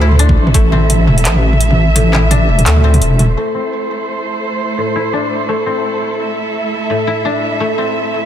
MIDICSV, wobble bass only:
0, 0, Header, 1, 2, 480
1, 0, Start_track
1, 0, Key_signature, 0, "minor"
1, 0, Tempo, 352941
1, 741, Time_signature, 4, 2, 24, 8
1, 11225, End_track
2, 0, Start_track
2, 0, Title_t, "Wobble bass"
2, 0, Program_c, 0, 39
2, 0, Note_on_c, 0, 38, 98
2, 501, Note_on_c, 0, 33, 104
2, 522, Note_off_c, 0, 38, 0
2, 725, Note_off_c, 0, 33, 0
2, 741, Note_on_c, 0, 33, 105
2, 1466, Note_on_c, 0, 28, 88
2, 1486, Note_off_c, 0, 33, 0
2, 1703, Note_on_c, 0, 33, 102
2, 1723, Note_off_c, 0, 28, 0
2, 3382, Note_on_c, 0, 28, 92
2, 3402, Note_off_c, 0, 33, 0
2, 3605, Note_off_c, 0, 28, 0
2, 3620, Note_on_c, 0, 38, 97
2, 4095, Note_off_c, 0, 38, 0
2, 4103, Note_on_c, 0, 28, 105
2, 4569, Note_off_c, 0, 28, 0
2, 11225, End_track
0, 0, End_of_file